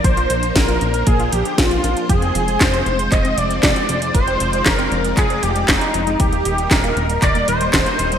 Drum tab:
HH |xxxxxxxxxxxxxxxx|xxxxxxxxxxxxxxxx|xxxxxxxxxxxxxxxx|xxxxxxxxxxxxxxxx|
CP |----------------|----x---x---x---|----x---x---x---|----x---x---x---|
SD |----o-------o---|----o-------o---|----o-------o---|----o-------o---|
BD |o---o---o---o---|o---o---o---o---|o---o---o---o---|o---o---o---o---|